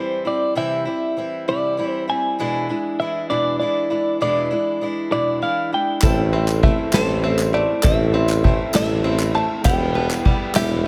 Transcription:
Already playing: E3 G3 C4 E4 C5
0.25 G3 C4 E4 D5
0.55 C3 E3 G3 C4 E4 E5
0.85 G3 C4 E4
1.17 E3 G3 C4 E4
1.48 C3 E3 G3 C4 E4 D5
1.77 E3 G3 C4 E4
1.92 C5
2.08 G3 C4 E4 G#5
2.39 E2 B2 E3 G#3 D4 E4
2.69 E3 G#3 D4 E4
3.00 E3 G#3 D4 E4 E5
3.30 E2 B2 E3 G#3 D4 E4 D5
3.60 E3 G#3 D4 E4 D5
3.90 E3 G#3 D4 E4
4.21 E2 B2 E3 G#3 D4 E4 D5
4.51 E3 G#3 D4 E4
4.81 E3 G#3 D4 E4
5.12 E2 B2 E3 G#3 D4 E4 D5
5.42 E3 G#3 D4 E4 F5
5.72 E3 G#3 D4 E4 G5
6.02 A1 A2 E3 A3 C4 E4 A4 C5 E5, kick, clap, ride, tambourine
6.33 A3 C4 E4 C5 E5, ride
6.47 clap, tambourine
6.62 E3 A3 C4 E4 C5 E5, kick, ride
6.92 A1 A2 E3 A3 C4 E4 A4 C5 E5, snare, clap, ride, tambourine
7.22 E3 A3 C4 E4 C5 E5, ride
7.26 E4
7.38 clap, tambourine
7.53 A3 C4 E4 C5 D5 E5, clap, ride
7.82 A1 A2 E3 A3 C4 E4 A4 C5 E5, kick, clap, ride, tambourine
8.12 A3 C4 E4 C5 E5, ride
8.28 clap, tambourine
8.42 E3 A3 C4 E4 C5 G5, kick, ride
8.73 A1 A2 E3 A3 C4 E4 A4 C5 E5, snare, clap, ride, tambourine
9.02 E3 A3 C4 E4 C5 E5, ride
9.19 clap, tambourine
9.33 A3 C4 E4 C5 E5 A5, clap, ride
9.64 E1 E2 B2 E3 G3 B3 E4 G4 B4 E5 G5, kick, clap, ride, tambourine
9.93 E3 G3 B3 E4 B4 G5, ride
10.10 clap, tambourine
10.24 E3 G3 B3 E4 B4 G5, kick, ride
10.54 E1 E2 B2 E3 G3 B3 E4 G4 B4 E5, snare, clap, ride, tambourine
10.84 G3

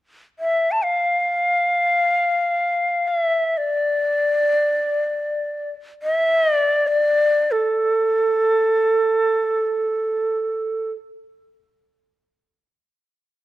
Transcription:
0.39 E5
0.71 A5
0.84 F5
3.08 F5
3.21 E5
3.57 D5
6.02 E5
6.53 D5
6.87 D5
7.51 A4

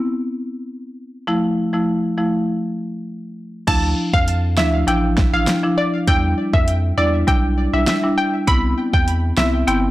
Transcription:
1.27 F3 A3 E4
1.73 F3 A3 E4
2.17 F3 A3 E4
3.67 D2 F3 D4 E4 A5, kick, closed hi-hat, crash
4.13 F2 F5, kick
4.28 closed hi-hat
4.57 D2 F3 D4 E4 E5, snare
4.87 A1 F3 D4 E4 G5, closed hi-hat
5.18 kick, snare
5.33 A1 F3 D4 E4 F5
5.47 snare, closed hi-hat
5.63 F3 D4 E4
5.78 D5
6.07 E2 G3 D4 E4 G5, kick, closed hi-hat
6.53 F2 E5, kick
6.68 closed hi-hat
6.97 E2 G3 D4 E4 D5
7.27 B1 G3 D4 E4 G5, kick, closed hi-hat
7.73 B1 G3 D4 E4 E5
7.87 E5, snare, closed hi-hat
8.03 G3 D4 E4
8.18 G5
8.47 C2 B3 C4 E4 B5, kick, closed hi-hat
8.93 E2 G5, kick
9.08 closed hi-hat
9.37 C2 B3 C4 E4 E5, snare
9.67 G1 B3 C4 E4 G5, closed hi-hat

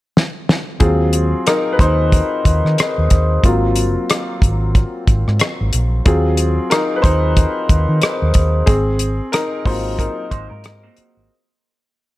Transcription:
0.17 snare
0.49 snare
0.80 D#2 F#3 C4 F4 G#4, kick, closed hi-hat
1.13 closed hi-hat
1.47 D#4 A#4, cross-stick, closed hi-hat
1.73 B4
1.79 D#2 D#4 C5, kick, cross-stick, closed hi-hat
2.12 kick, closed hi-hat
2.45 D#2, kick, closed hi-hat
2.65 D#3, cross-stick
2.78 cross-stick, closed hi-hat
2.98 D#2
3.10 D#2, kick, closed hi-hat
3.44 G#1 F#3 A#3 C4 F4, kick, closed hi-hat
3.76 closed hi-hat
4.10 cross-stick, closed hi-hat
4.42 G#1, kick, closed hi-hat
4.75 kick, closed hi-hat
5.08 G#1, kick, closed hi-hat
5.28 G#2, cross-stick
5.40 cross-stick, closed hi-hat
5.61 G#1
5.73 A#1, closed hi-hat
6.05 D#2 F#3 C4 F4 G#4, kick, closed hi-hat
6.37 closed hi-hat
6.70 D#4 A#4, cross-stick, closed hi-hat
6.96 B4
7.02 D#2 D#4 C5, kick, cross-stick, closed hi-hat
7.37 kick, closed hi-hat
7.69 D#2, kick, closed hi-hat
7.89 D#3
8.02 cross-stick, closed hi-hat
8.22 D#2
8.34 D#2, kick, closed hi-hat
8.66 G#1 C4 G#4, kick, closed hi-hat
8.99 closed hi-hat
9.32 D#4 A#4, cross-stick, closed hi-hat
9.65 G#1 F#3 A#3 C4 D#4 F4 C5, kick, open hi-hat
9.98 D#4 A#4, kick, closed hi-hat
10.31 G#1 D#4 C5, kick, closed hi-hat
10.50 G#2 A#4
10.64 cross-stick, closed hi-hat
10.83 A#3 F#4
10.97 muted fingered electric bass stroke, closed hi-hat
11.17 G#1

